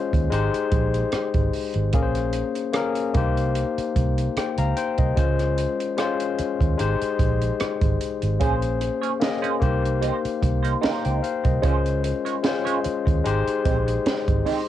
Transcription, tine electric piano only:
0.00 0.30 G#3 medium
0.00 0.32 C#4 medium
0.00 0.33 F4 medium
0.00 0.32 C5 medium
0.30 1.61 G#3 medium
0.30 1.62 D#4 medium
0.30 1.62 G4 medium
0.30 1.62 C5 medium
1.93 2.57 A#3 medium
1.93 2.57 C#4 medium
1.93 2.57 G#4 medium
1.93 2.02 A#4 medium
2.02 2.61 C5 medium
2.73 3.13 A#3 medium
2.73 3.15 C#4 medium
2.73 3.15 G#4 medium
2.73 3.16 A#4 medium
3.14 4.44 A#3 medium
3.14 4.45 D#4 medium
3.14 4.46 G4 medium
3.14 4.37 C5 medium
4.38 4.58 C5 soft
4.38 4.58 G5 medium
4.58 4.76 F5 medium
4.58 4.76 A#5 medium
4.76 4.98 C5 medium
4.76 4.97 G5 medium
4.98 5.37 A#4 soft
4.98 5.37 D#5 medium
5.16 5.80 G#3 medium
5.16 5.80 C#4 medium
5.16 5.81 F4 medium
5.16 5.81 C5 medium
5.97 6.76 G#3 medium
5.97 6.79 C#4 medium
5.97 6.79 F4 medium
5.97 6.80 C5 medium
6.77 8.08 G#3 medium
6.77 8.09 D#4 medium
6.77 8.09 G4 medium
6.77 8.10 C5 medium
8.39 9.03 A#3 medium
8.39 9.04 C#4 medium
8.39 9.04 G#4 medium
8.39 9.05 C5 medium
9.20 9.59 A#3 medium
9.20 9.61 C#4 medium
9.20 9.62 G#4 medium
9.20 9.62 D#5 medium
9.60 10.91 A#3 medium
9.60 10.91 D#4 medium
9.60 10.92 G4 medium
9.60 10.84 C5 medium
10.83 11.04 F5 soft
10.83 11.04 A#5 medium
11.05 11.23 C5 medium
11.05 11.23 G5 medium
11.23 11.44 C5 medium
11.23 11.44 F5 medium
11.45 11.84 A#4 soft
11.45 11.83 D#5 medium
11.62 12.26 G#3 medium
11.62 12.26 C#4 medium
11.62 12.27 F4 medium
11.62 12.28 C5 medium
12.43 13.23 G#3 medium
12.43 13.25 C#4 medium
12.43 13.26 F4 medium
12.43 13.26 C5 medium
13.24 14.55 G#3 medium
13.24 14.55 D#4 medium
13.24 14.56 G4 medium
13.24 14.56 C5 medium

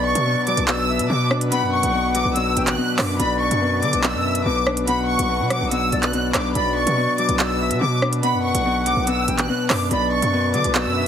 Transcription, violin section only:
0.05 0.44 C#6 medium
0.47 0.64 D6 medium
0.68 1.07 E6 medium
1.10 1.27 D6 medium
1.52 1.69 B5 loud
1.73 2.12 C#6 medium
2.15 2.32 D6 medium
2.36 2.65 E6 medium
2.67 2.97 F#6 medium
2.99 3.16 D6 medium
3.20 3.37 B5 loud
3.41 3.80 C#6 medium
3.83 4.00 D6 medium
4.04 4.43 E6 medium
4.45 4.63 D6 medium
4.87 5.05 B5 loud
5.08 5.48 C#6 medium
5.50 5.68 D6 medium
5.71 6.01 E6 medium
6.03 6.33 F#6 medium
6.34 6.52 D6 medium
6.55 6.73 B5 medium
6.76 7.16 C#6 medium
7.18 7.36 D6 medium
7.39 7.79 E6 medium
7.81 7.99 D6 medium
8.23 8.41 B5 loud
8.44 8.84 C#6 medium
8.86 9.04 D6 medium
9.07 9.37 E6 medium
9.39 9.68 F#6 medium
9.70 9.87 D6 medium
9.91 10.08 B5 medium
10.12 10.51 C#6 medium
10.54 10.71 D6 medium
10.75 11.08 E6 medium

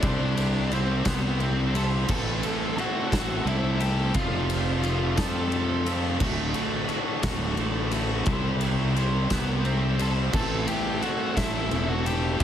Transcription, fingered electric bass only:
0.03 1.01 C2 loud
1.05 2.04 C2 loud
2.09 2.40 A1 loud
3.12 3.43 A1 loud
3.45 4.10 C2 loud
4.15 5.14 F1 loud
5.18 6.17 F2 loud
6.20 6.52 D1 medium
7.23 7.54 D1 loud
7.57 8.22 A1 loud
8.26 9.26 C2 loud
9.31 10.30 C2 loud
10.33 10.64 A1 loud
11.37 11.68 A1 loud
11.71 12.36 E1 loud
12.40 12.44 F1 loud

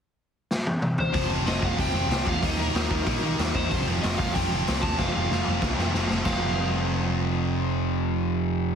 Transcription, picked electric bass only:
1.15 1.25 F1 medium
1.30 1.40 F1 medium
1.46 1.57 F1 loud
1.62 1.73 F1 medium
1.79 1.89 F1 loud
1.94 2.04 F1 medium
2.09 2.19 C2 loud
2.26 2.37 D#2 loud
2.43 2.53 D#2 medium
2.58 2.68 D#2 medium
2.74 2.85 D#2 medium
2.91 3.01 D#2 medium
3.07 3.17 A#2 loud
3.23 3.33 D#3 medium
3.39 3.49 D#2 loud
3.55 3.65 E2 loud
3.72 3.82 F1 loud
3.87 3.97 F1 medium
4.04 4.14 F1 loud
4.19 4.29 F1 medium
4.36 4.45 F1 medium
4.52 4.61 F1 loud
4.69 4.78 C2 loud
4.83 4.93 D#2 loud
4.98 5.08 F1 loud
5.17 5.26 F1 medium
5.31 5.41 F1 medium
5.48 5.57 F1 loud
5.62 5.72 C2 medium
5.78 5.88 F2 medium
5.94 6.04 F1 loud
6.10 6.20 F1 medium
6.26 8.75 F1 medium

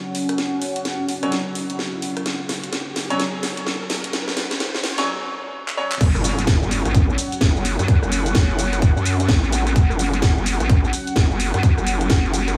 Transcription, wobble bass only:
6.01 6.23 F#1 medium
6.24 6.60 F#1 medium
6.62 6.83 F#1 medium
6.86 7.17 A1 loud
7.41 7.53 F#1 loud
7.56 7.77 F#1 medium
7.79 8.00 F#2 medium
8.03 8.34 F#1 loud
8.35 8.81 F#1 loud
8.82 8.94 F#1 medium
8.96 9.27 F#2 loud
9.29 9.74 A1 loud
9.76 9.98 F#1 medium
9.99 10.35 F#1 loud
10.37 10.58 F#1 loud
10.60 10.91 A1 medium
11.16 11.28 F#1 medium
11.31 11.52 F#1 loud
11.54 11.75 F#2 loud
11.78 12.09 F#1 loud
12.10 12.56 F#1 loud

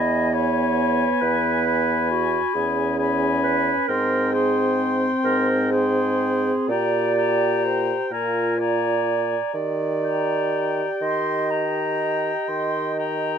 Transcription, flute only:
0.00 0.32 B5 soft
0.33 1.64 B5 medium
1.65 2.96 B5 medium
2.99 3.87 B5 medium
3.90 4.33 C6 medium
4.33 5.47 C6 medium
5.71 6.67 C6 soft
6.70 7.16 A#5 soft
7.17 8.10 A#5 medium
8.11 8.58 A#5 soft
8.60 9.53 A#5 soft
10.03 10.90 A#5 soft
11.02 11.52 C6 medium
11.51 12.50 A#5 soft
12.48 12.96 C6 medium
12.97 13.38 A#5 medium

